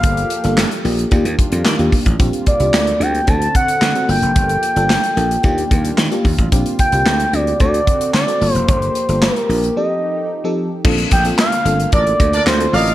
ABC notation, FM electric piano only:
X:1
M:4/4
L:1/16
Q:1/4=111
K:Bb
V:1 name="FM electric piano"
[B,DFA]2 z [B,DFA]2 z [B,DFG]2 [B,DFG]4 z [B,DFG]2 z | [CDFG]2 z [CDFG]2 z [CDFG]2 [CD^FA]4 z [CDFA] [B,D=FA]2- | [B,DFA]2 z [B,DFA]2 z [B,DFA]2 [B,DFG]4 z [B,DFG]2 z | [CDFG]2 z [CDFG]2 z [CDFG]2 [CD^FA]4 z [CDFA] [B,D=FA]2- |
[B,DFA]2 z [B,DFA]2 z [B,DFG]2 [F,CEGA]4 z [F,CEGA]2 z | [CDFA]2 z [CDFA]2 z [CDFA]4 z3 [CDFA] [CDFA] z |]